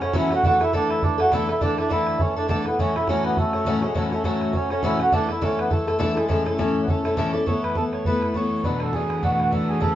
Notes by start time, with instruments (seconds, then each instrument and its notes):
0.01 twelve-string acoustic guitar F#3 A3 C#4 F#4, accordion C#4, bodhran
0.13 twelve-string acoustic guitar A2 E3 F#3 A3 C#4 F#4, bodhran
0.17 accordion E4
0.31 twelve-string acoustic guitar F#3 A3 C#4 F#4, bodhran
0.35 accordion F#4
0.43 twelve-string acoustic guitar D3 E3 A3 E4 A4, accordion F#4, bodhran
0.60 twelve-string acoustic guitar A3 E4 A4, accordion E4, bodhran
0.73 twelve-string acoustic guitar D3 E3 A3 E4 A4, accordion D4, bodhran
0.90 accordion E4, bodhran
1.02 twelve-string acoustic guitar E3 A3 E4 A4, accordion D4, bodhran
1.18 twelve-string acoustic guitar A3 E4 A4, accordion F#4, bodhran
1.32 twelve-string acoustic guitar D3 E3 A3 E4 A4, accordion E4, bodhran
1.49 twelve-string acoustic guitar A3 E4 A4, accordion E4, bodhran
1.61 twelve-string acoustic guitar D3 E3 A3 E4 A4, accordion D4, bodhran
1.77 twelve-string acoustic guitar A3 E4 A4, accordion D4, bodhran
1.89 twelve-string acoustic guitar D3 E3 A3 E4 A4, accordion E4, bodhran
2.07 bodhran
2.18 twelve-string acoustic guitar E3 A3 E4 A4, accordion C#4, bodhran
2.36 twelve-string acoustic guitar A3 E4 A4, accordion D4
2.48 twelve-string acoustic guitar D3 E3 A3 E4 A4, accordion D4, bodhran
2.66 twelve-string acoustic guitar A3 E4 A4, accordion B3, bodhran
2.79 twelve-string acoustic guitar A2 E3 F#3 A3 C#4 F#4, accordion C#4, bodhran
2.95 twelve-string acoustic guitar F#3 A3 C#4 F#4, accordion E4, bodhran
3.07 twelve-string acoustic guitar A2 E3 F#3 A3 C#4 F#4, accordion C#4, bodhran
3.24 accordion B3, bodhran
3.37 twelve-string acoustic guitar F#3 A3 C#4 F#4, accordion A3, bodhran
3.53 twelve-string acoustic guitar F#3 A3 C#4 F#4, bodhran
3.65 twelve-string acoustic guitar A2 E3 F#3 A3 C#4 F#4, bodhran
3.82 twelve-string acoustic guitar F#3 A3 C#4 F#4, accordion G#3, bodhran
3.94 twelve-string acoustic guitar A2 E3 F#3 A3 C#4 F#4, accordion A3, bodhran
4.12 twelve-string acoustic guitar F#3 A3 C#4 F#4, accordion A3, bodhran
4.24 twelve-string acoustic guitar A2 E3 F#3 A3 C#4 F#4, accordion A3, bodhran
4.41 bodhran
4.53 twelve-string acoustic guitar F#3 A3 C#4 F#4, accordion C#4, bodhran
4.70 twelve-string acoustic guitar F#3 A3 C#4 F#4, accordion C#4, bodhran
4.83 twelve-string acoustic guitar A2 E3 F#3 A3 C#4 F#4, accordion E4, bodhran
5.00 twelve-string acoustic guitar F#3 A3 C#4 F#4, accordion F#4, bodhran
5.12 twelve-string acoustic guitar D3 E3 A3 E4 A4, accordion D4, bodhran
5.29 twelve-string acoustic guitar A3 E4 A4, accordion E4, bodhran
5.41 twelve-string acoustic guitar D3 E3 A3 E4 A4, accordion C#4, bodhran
5.59 accordion B3, bodhran
5.70 twelve-string acoustic guitar E3 A3 E4 A4, accordion A3, bodhran
5.87 twelve-string acoustic guitar A3 E4 A4, bodhran
5.99 twelve-string acoustic guitar D3 E3 A3 E4 A4, bodhran
6.16 accordion G#3, twelve-string acoustic guitar A3 E4 A4, bodhran
6.28 twelve-string acoustic guitar A2 E3 A3 C#4 E4 A4, bodhran
6.45 twelve-string acoustic guitar A3 C#4 E4 A4, bodhran
6.53 accordion A3
6.58 twelve-string acoustic guitar A2 E3 A3 C#4 E4 A4, accordion C#4, bodhran
6.83 accordion B3
6.88 twelve-string acoustic guitar A3 C#4 E4 A4, accordion A3, bodhran
7.04 twelve-string acoustic guitar A3 C#4 E4 A4, bodhran
7.17 twelve-string acoustic guitar A2 E3 A3 C#4 E4 A4, bodhran
7.33 twelve-string acoustic guitar A3 C#4 E4 A4, accordion D5
7.46 string section A2 E3, twelve-string acoustic guitar A3 B3 E4 A4, accordion C#5, bodhran
7.63 accordion B4, bodhran
7.70 bodhran
7.75 twelve-string acoustic guitar A3 B3 E4 A4, accordion A4, bodhran
7.93 accordion C#5, bodhran
8.05 twelve-string acoustic guitar A3 B3 E4 A4, accordion B4, bodhran
8.22 bodhran
8.34 twelve-string acoustic guitar A3 B3 E4 A4, accordion C#5, bodhran
8.64 twelve-string acoustic guitar B2 F#3 A3 D4 F#4, accordion B4, bodhran
8.80 accordion A4, bodhran
8.86 bodhran
8.93 twelve-string acoustic guitar F#3 A3 D4 F#4, accordion G#4, bodhran
9.10 bodhran
9.22 twelve-string acoustic guitar B2 F#3 A3 D4 F#4, accordion F#4, bodhran
9.32 accordion F#4
9.40 accordion F#4, bodhran
9.51 twelve-string acoustic guitar F#3 A3 D4 F#4, accordion A4, bodhran
9.69 accordion G#4
9.80 twelve-string acoustic guitar F#2 C#3 F#3 A3 C#4 G#4, accordion A4, bodhran